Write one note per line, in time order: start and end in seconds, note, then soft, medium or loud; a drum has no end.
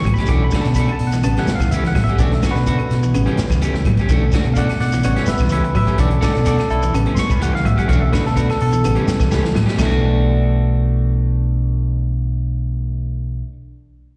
0.00 0.25 C#3 medium
0.00 0.25 G3 medium
0.00 0.26 B3 medium
0.00 0.14 C#6 medium
0.00 shekere soft
0.05 0.17 A2 medium
0.05 0.22 F#3 medium
0.05 muted clean electric guitar stroke soft
0.05 kick medium
0.05 closed hi-hat medium
0.05 claves medium
0.14 0.29 B5 medium
0.14 kick medium
0.14 shekere soft
0.18 0.30 A3 soft
0.18 0.30 C#4 soft
0.18 0.30 G4 medium
0.18 snare soft
0.18 closed hi-hat soft
0.26 0.52 B1 medium
0.26 0.96 D3 medium
0.26 0.46 E3 medium
0.26 0.96 A3 soft
0.26 0.97 C#4 medium
0.26 0.45 D6 medium
0.26 kick medium
0.26 closed hi-hat medium
0.26 shekere medium
0.31 0.43 A3 medium
0.31 0.43 D4 medium
0.31 0.43 F#4 medium
0.44 0.60 B5 medium
0.44 muted clean electric guitar stroke soft
0.51 0.69 D3 medium
0.51 0.66 A3 medium
0.51 kick medium
0.51 snare medium
0.51 closed hi-hat soft
0.51 claves medium
0.51 shekere medium
0.55 0.66 D4 medium
0.55 0.66 F#4 medium
0.61 0.77 A5 medium
0.61 snare soft
0.61 closed hi-hat soft
0.61 shekere soft
0.65 0.88 B2 medium
0.65 muted clean electric guitar stroke soft
0.75 0.90 A3 medium
0.75 0.92 B5 medium
0.75 kick medium
0.75 closed hi-hat medium
0.75 shekere medium
0.80 0.90 D4 medium
0.80 0.90 F#4 medium
0.88 muted clean electric guitar stroke soft
0.88 closed hi-hat soft
0.88 claves medium
0.92 1.08 A5 medium
0.99 1.23 B2 medium
0.99 open hi-hat medium
0.99 shekere soft
1.07 1.23 F#5 medium
1.12 1.21 E3 medium
1.12 muted clean electric guitar stroke soft
1.12 snare soft
1.12 closed hi-hat soft
1.12 shekere medium
1.22 1.36 A1 medium
1.22 2.14 C#3 medium
1.22 1.40 C#3 medium
1.22 2.15 G3 medium
1.22 2.15 B3 medium
1.22 1.40 A5 medium
1.22 muted clean electric guitar stroke soft
1.22 closed hi-hat medium
1.22 claves medium
1.22 shekere medium
1.36 1.48 E3 medium
1.36 1.49 A3 medium
1.36 1.49 C#4 medium
1.36 1.49 G4 medium
1.36 1.55 F#5 medium
1.36 snare soft
1.36 closed hi-hat soft
1.47 muted fingered electric bass stroke soft
1.47 muted clean electric guitar stroke soft
1.47 snare medium
1.47 closed hi-hat medium
1.47 shekere medium
1.55 1.71 F5 medium
1.60 1.83 C#2 medium
1.60 1.77 E3 medium
1.60 kick medium
1.60 snare soft
1.60 closed hi-hat soft
1.60 claves medium
1.60 shekere medium
1.71 1.85 E3 medium
1.71 1.84 A3 medium
1.71 1.84 C#4 medium
1.71 1.83 G4 medium
1.71 1.87 E5 medium
1.71 closed hi-hat medium
1.71 shekere medium
1.84 1.92 E3 medium
1.84 2.03 F#5 loud
1.84 muted clean electric guitar stroke soft
1.84 snare soft
1.84 closed hi-hat soft
1.95 2.07 A2 medium
1.95 2.12 F#3 medium
1.95 muted clean electric guitar stroke soft
1.95 kick medium
1.95 snare soft
1.95 open hi-hat medium
1.95 claves medium
1.95 shekere soft
2.04 2.19 E5 loud
2.04 kick medium
2.04 closed hi-hat soft
2.08 2.19 A3 soft
2.08 2.20 C#4 soft
2.08 2.20 G4 medium
2.08 shekere soft
2.18 2.41 B1 medium
2.18 2.86 D3 medium
2.18 2.36 E3 medium
2.18 2.87 A3 soft
2.18 2.32 A3 medium
2.18 2.87 C#4 medium
2.18 2.32 D4 medium
2.18 2.32 F#4 medium
2.18 2.35 D5 medium
2.18 kick medium
2.18 closed hi-hat medium
2.18 shekere medium
2.32 2.51 E5 medium
2.32 muted clean electric guitar stroke soft
2.32 snare soft
2.32 closed hi-hat soft
2.42 2.59 D3 medium
2.42 2.56 A3 medium
2.42 2.55 D4 medium
2.42 2.54 F#4 medium
2.42 kick medium
2.42 snare medium
2.42 closed hi-hat soft
2.42 claves medium
2.42 shekere medium
2.51 3.89 F#4 medium
2.51 3.90 B4 medium
2.55 2.77 B2 medium
2.55 muted clean electric guitar stroke soft
2.55 snare soft
2.55 closed hi-hat soft
2.55 shekere soft
2.66 2.79 A3 medium
2.66 2.78 D4 medium
2.66 2.77 F#4 medium
2.66 kick medium
2.66 closed hi-hat medium
2.66 shekere medium
2.78 muted clean electric guitar stroke soft
2.78 closed hi-hat soft
2.78 claves medium
2.90 3.13 B2 medium
2.90 snare soft
2.90 closed hi-hat soft
2.90 shekere soft
3.03 3.11 E3 medium
3.03 muted clean electric guitar stroke medium
3.03 closed hi-hat soft
3.03 shekere medium
3.14 3.26 A1 medium
3.14 4.05 C#3 medium
3.14 3.31 C#3 medium
3.14 4.05 G3 medium
3.14 4.06 B3 medium
3.14 muted clean electric guitar stroke soft
3.14 closed hi-hat medium
3.14 claves medium
3.14 shekere medium
3.26 3.37 E3 medium
3.26 3.37 A3 medium
3.26 3.38 C#4 medium
3.26 3.38 G4 medium
3.26 closed hi-hat soft
3.37 muted fingered electric bass stroke soft
3.37 muted clean electric guitar stroke soft
3.37 snare medium
3.37 closed hi-hat soft
3.37 shekere medium
3.50 3.73 C#2 medium
3.50 3.67 E3 medium
3.50 kick medium
3.50 snare soft
3.50 closed hi-hat soft
3.50 claves medium
3.50 shekere medium
3.61 3.74 A3 medium
3.61 3.74 C#4 medium
3.61 3.74 G4 medium
3.61 closed hi-hat medium
3.61 shekere medium
3.74 3.82 E3 medium
3.74 muted clean electric guitar stroke soft
3.74 snare soft
3.85 3.97 A2 medium
3.85 4.03 F#3 medium
3.85 muted clean electric guitar stroke medium
3.85 kick medium
3.85 closed hi-hat soft
3.85 claves medium
3.85 shekere soft
3.97 4.11 C#4 medium
3.97 4.10 G4 medium
3.97 kick medium
3.97 closed hi-hat soft
3.97 shekere soft
4.09 4.31 B1 medium
4.09 5.01 D3 soft
4.09 4.26 E3 loud
4.09 5.01 A3 soft
4.09 4.23 A3 medium
4.09 5.01 C#4 medium
4.09 4.23 D4 loud
4.09 4.22 F#4 medium
4.09 kick medium
4.09 closed hi-hat medium
4.09 shekere medium
4.23 muted clean electric guitar stroke soft
4.32 4.50 D3 medium
4.32 4.46 A3 medium
4.32 4.45 D4 medium
4.32 4.45 F#4 loud
4.32 kick medium
4.32 snare medium
4.32 closed hi-hat soft
4.32 claves medium
4.32 shekere medium
4.45 4.67 B2 medium
4.45 muted clean electric guitar stroke soft
4.45 closed hi-hat soft
4.45 shekere soft
4.54 4.69 A3 medium
4.54 4.68 D4 medium
4.54 4.68 F#4 medium
4.54 4.79 D5 medium
4.54 4.57 F5 medium
4.54 kick medium
4.54 closed hi-hat medium
4.54 shekere medium
4.58 4.80 F#5 loud
4.69 muted clean electric guitar stroke soft
4.69 snare soft
4.69 closed hi-hat soft
4.69 claves medium
4.80 5.03 B2 medium
4.80 5.03 D5 medium
4.80 5.03 F#5 medium
4.80 snare soft
4.80 open hi-hat medium
4.80 shekere soft
4.92 5.01 E3 medium
4.92 muted clean electric guitar stroke soft
4.92 snare soft
4.92 closed hi-hat soft
4.92 shekere medium
5.03 5.16 A1 medium
5.03 5.71 C#3 medium
5.03 5.21 C#3 medium
5.03 5.72 G3 medium
5.03 5.72 B3 medium
5.03 5.27 C#5 medium
5.03 5.28 F#5 medium
5.03 muted clean electric guitar stroke soft
5.03 closed hi-hat medium
5.03 claves medium
5.03 shekere medium
5.16 5.26 E3 medium
5.16 5.26 A3 medium
5.16 5.27 C#4 medium
5.16 5.26 G4 medium
5.16 snare soft
5.16 closed hi-hat soft
5.26 5.50 B4 medium
5.26 5.51 E5 medium
5.26 muted clean electric guitar stroke soft
5.26 muted fingered electric bass stroke soft
5.26 snare medium
5.26 closed hi-hat medium
5.26 shekere medium
5.38 5.63 C#2 medium
5.38 5.57 E3 medium
5.38 kick medium
5.38 snare soft
5.38 closed hi-hat soft
5.38 claves medium
5.38 shekere medium
5.49 5.64 E3 medium
5.49 5.62 A3 medium
5.49 5.62 C#4 medium
5.49 5.62 G4 medium
5.49 5.74 B4 medium
5.49 5.75 E5 medium
5.49 closed hi-hat medium
5.49 shekere medium
5.63 5.72 E3 medium
5.63 muted clean electric guitar stroke soft
5.63 closed hi-hat soft
5.75 5.87 A2 medium
5.75 5.91 F#3 medium
5.75 5.98 B4 medium
5.75 5.99 E5 medium
5.75 muted clean electric guitar stroke soft
5.75 kick medium
5.75 open hi-hat medium
5.75 claves medium
5.75 shekere soft
5.87 5.97 A3 soft
5.87 5.98 C#4 medium
5.87 5.99 G4 medium
5.87 kick medium
5.87 closed hi-hat soft
5.87 shekere soft
5.98 6.21 B1 medium
5.98 6.90 D3 medium
5.98 6.16 E3 medium
5.98 6.11 A3 medium
5.98 6.90 A3 soft
5.98 6.91 C#4 medium
5.98 6.09 D4 medium
5.98 6.09 F#4 medium
5.98 6.22 A4 medium
5.98 6.23 D5 medium
5.98 kick medium
5.98 closed hi-hat medium
5.98 shekere medium
6.10 muted clean electric guitar stroke soft
6.10 closed hi-hat soft
6.21 6.39 D3 medium
6.21 6.34 A3 medium
6.21 6.34 D4 medium
6.21 6.33 F#4 medium
6.21 6.45 A4 medium
6.21 6.46 D5 medium
6.21 kick medium
6.21 snare medium
6.21 closed hi-hat soft
6.21 claves medium
6.21 shekere medium
6.34 6.58 B2 medium
6.34 muted clean electric guitar stroke soft
6.34 snare soft
6.34 closed hi-hat soft
6.34 shekere soft
6.45 6.58 A3 medium
6.45 6.57 D4 medium
6.45 6.57 F#4 medium
6.45 6.69 A4 medium
6.45 6.70 D5 medium
6.45 kick medium
6.45 snare soft
6.45 closed hi-hat medium
6.45 shekere medium
6.58 muted clean electric guitar stroke soft
6.58 snare soft
6.58 closed hi-hat soft
6.58 claves medium
6.69 6.93 B1 medium
6.69 6.93 E4 loud
6.69 6.94 A4 loud
6.69 closed hi-hat soft
6.69 shekere soft
6.82 6.91 E3 medium
6.82 muted clean electric guitar stroke soft
6.82 closed hi-hat soft
6.82 shekere medium
6.93 7.06 A1 medium
6.93 7.85 C#3 medium
6.93 7.11 C#3 medium
6.93 7.85 G3 medium
6.93 7.85 B3 medium
6.93 muted clean electric guitar stroke soft
6.93 closed hi-hat medium
6.93 claves medium
6.93 shekere medium
7.06 7.17 E3 medium
7.06 7.18 A3 medium
7.06 7.17 C#4 medium
7.06 muted clean electric guitar stroke medium
7.06 closed hi-hat soft
7.15 7.18 C6 medium
7.15 muted fingered electric bass stroke soft
7.15 muted clean electric guitar stroke soft
7.15 snare medium
7.15 closed hi-hat soft
7.15 shekere loud
7.19 7.30 C#6 loud
7.30 7.53 C#2 medium
7.30 7.41 B5 medium
7.30 kick medium
7.30 closed hi-hat soft
7.30 claves medium
7.30 shekere medium
7.40 7.53 E3 medium
7.40 7.53 A3 medium
7.40 7.52 C#4 medium
7.40 7.52 G4 medium
7.40 7.54 F#5 medium
7.40 closed hi-hat medium
7.40 shekere medium
7.53 7.61 E3 medium
7.53 7.65 F5 loud
7.53 muted clean electric guitar stroke soft
7.53 snare soft
7.65 7.77 A2 medium
7.65 7.82 F#3 medium
7.65 7.77 E5 medium
7.65 muted clean electric guitar stroke soft
7.65 kick medium
7.65 closed hi-hat medium
7.65 claves medium
7.65 shekere soft
7.77 7.87 A3 soft
7.77 7.89 C#4 soft
7.77 7.88 G4 medium
7.77 7.89 F#5 medium
7.77 kick medium
7.77 closed hi-hat soft
7.77 shekere soft
7.88 8.12 B1 medium
7.88 8.56 D3 medium
7.88 8.05 E3 medium
7.88 8.01 A3 medium
7.88 8.57 A3 medium
7.88 8.57 C#4 medium
7.88 8.00 D4 medium
7.88 8.00 F#4 medium
7.88 8.01 F5 medium
7.88 kick medium
7.88 closed hi-hat medium
7.92 shekere medium
8.01 8.12 E5 medium
8.01 muted clean electric guitar stroke soft
8.13 8.29 D3 medium
8.13 8.25 A3 medium
8.13 8.24 D4 medium
8.13 8.24 F#4 loud
8.13 8.25 B4 medium
8.13 kick medium
8.13 snare medium
8.13 closed hi-hat soft
8.13 claves medium
8.13 shekere medium
8.25 8.48 B2 medium
8.25 8.37 A4 loud
8.25 muted clean electric guitar stroke soft
8.25 snare soft
8.25 closed hi-hat soft
8.25 shekere soft
8.36 8.48 A3 medium
8.36 8.49 D4 medium
8.36 8.48 F#4 medium
8.36 8.48 B4 medium
8.36 kick medium
8.36 closed hi-hat medium
8.36 shekere medium
8.49 8.60 A4 medium
8.49 muted clean electric guitar stroke soft
8.49 snare soft
8.49 closed hi-hat soft
8.49 claves medium
8.60 8.83 B2 loud
8.60 9.53 A4 medium
8.60 open hi-hat medium
8.60 shekere soft
8.72 8.81 E3 medium
8.72 muted clean electric guitar stroke soft
8.72 closed hi-hat soft
8.72 shekere medium
8.83 8.96 A1 loud
8.83 9.51 C#3 medium
8.83 9.01 C#3 medium
8.83 9.52 G3 medium
8.83 9.52 B3 medium
8.83 muted clean electric guitar stroke soft
8.83 closed hi-hat medium
8.83 claves medium
8.83 shekere medium
8.95 9.06 E3 medium
8.95 9.06 A3 medium
8.95 9.07 C#4 medium
8.95 9.07 G4 medium
8.95 closed hi-hat soft
9.08 muted clean electric guitar stroke soft
9.08 muted fingered electric bass stroke soft
9.08 snare medium
9.08 closed hi-hat soft
9.08 shekere medium
9.20 9.43 C#2 medium
9.20 9.36 E3 medium
9.20 kick medium
9.20 snare soft
9.20 closed hi-hat soft
9.20 claves medium
9.20 shekere medium
9.31 9.44 E3 medium
9.31 9.43 A3 medium
9.31 9.42 C#4 medium
9.31 9.43 G4 medium
9.31 snare medium
9.31 shekere medium
9.44 9.52 E3 medium
9.44 muted clean electric guitar stroke soft
9.44 snare medium
9.54 9.67 A2 medium
9.54 9.72 F#3 medium
9.54 muted clean electric guitar stroke soft
9.54 snare medium
9.54 claves medium
9.54 shekere soft
9.66 9.74 A3 medium
9.66 9.79 C#4 medium
9.66 9.78 G4 medium
9.66 snare medium
9.66 shekere soft
9.75 13.42 B1 medium
9.75 13.38 B2 medium
9.75 9.93 B2 medium
9.75 13.40 E3 medium
9.75 13.42 A3 medium
9.75 kick medium
9.75 shekere loud
9.79 13.43 A3 medium
9.79 13.47 D4 loud
9.79 13.45 D4 medium
9.79 snare medium
9.79 crash medium
9.79 claves medium
9.85 13.52 F#4 loud